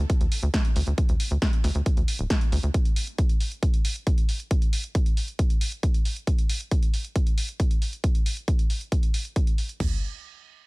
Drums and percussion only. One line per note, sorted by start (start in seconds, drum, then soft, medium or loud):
0.10 kick loud
0.10 closed hi-hat medium
0.21 closed hi-hat medium
0.32 open hi-hat loud
0.43 closed hi-hat soft
0.54 kick loud
0.54 snare loud
0.54 closed hi-hat medium
0.65 closed hi-hat soft
0.76 open hi-hat loud
0.87 closed hi-hat soft
0.98 kick loud
0.98 closed hi-hat medium
1.09 closed hi-hat medium
1.20 open hi-hat loud
1.31 closed hi-hat soft
1.42 kick loud
1.42 snare loud
1.42 closed hi-hat medium
1.53 closed hi-hat soft
1.64 snare soft
1.64 open hi-hat loud
1.75 closed hi-hat soft
1.86 kick loud
1.86 closed hi-hat medium
1.97 closed hi-hat soft
2.08 open hi-hat loud
2.19 closed hi-hat soft
2.30 kick loud
2.30 snare loud
2.30 closed hi-hat medium
2.41 closed hi-hat soft
2.52 open hi-hat loud
2.63 closed hi-hat soft
2.74 kick loud
2.74 closed hi-hat medium
2.85 closed hi-hat soft
2.96 open hi-hat loud
3.07 closed hi-hat soft
3.18 kick loud
3.18 closed hi-hat medium
3.29 closed hi-hat soft
3.40 open hi-hat loud
3.52 closed hi-hat soft
3.63 kick loud
3.63 closed hi-hat medium
3.74 closed hi-hat soft
3.85 open hi-hat loud
3.96 closed hi-hat soft
4.07 kick loud
4.07 closed hi-hat medium
4.18 closed hi-hat soft
4.29 open hi-hat loud
4.40 closed hi-hat soft
4.51 kick loud
4.51 closed hi-hat medium
4.62 closed hi-hat medium
4.73 open hi-hat medium
4.84 closed hi-hat soft
4.95 kick loud
4.95 closed hi-hat medium
5.06 closed hi-hat soft
5.17 open hi-hat loud
5.28 closed hi-hat soft
5.39 kick loud
5.39 closed hi-hat medium
5.50 closed hi-hat soft
5.61 open hi-hat loud
5.72 closed hi-hat soft
5.83 kick loud
5.83 closed hi-hat medium
5.94 closed hi-hat soft
6.05 open hi-hat loud
6.16 closed hi-hat soft
6.27 kick loud
6.27 closed hi-hat medium
6.38 closed hi-hat medium
6.49 open hi-hat loud
6.61 closed hi-hat medium
6.71 kick loud
6.71 closed hi-hat medium
6.83 closed hi-hat medium
6.94 open hi-hat loud
7.05 closed hi-hat soft
7.16 kick loud
7.16 closed hi-hat medium
7.27 closed hi-hat medium
7.38 open hi-hat medium
7.49 closed hi-hat soft
7.60 kick loud
7.60 closed hi-hat medium
7.71 closed hi-hat soft
7.82 open hi-hat medium
7.93 closed hi-hat medium
8.04 kick loud
8.04 closed hi-hat medium
8.15 closed hi-hat medium
8.26 open hi-hat medium
8.37 closed hi-hat soft
8.48 kick loud
8.48 closed hi-hat medium
8.59 closed hi-hat medium
8.70 open hi-hat medium
8.81 closed hi-hat soft
8.92 kick loud
8.92 closed hi-hat medium
9.03 closed hi-hat medium
9.14 open hi-hat medium
9.25 closed hi-hat soft
9.36 kick loud
9.36 closed hi-hat medium
9.47 closed hi-hat soft
9.58 open hi-hat medium
9.69 closed hi-hat soft
9.80 kick medium
9.80 floor tom loud
9.80 crash medium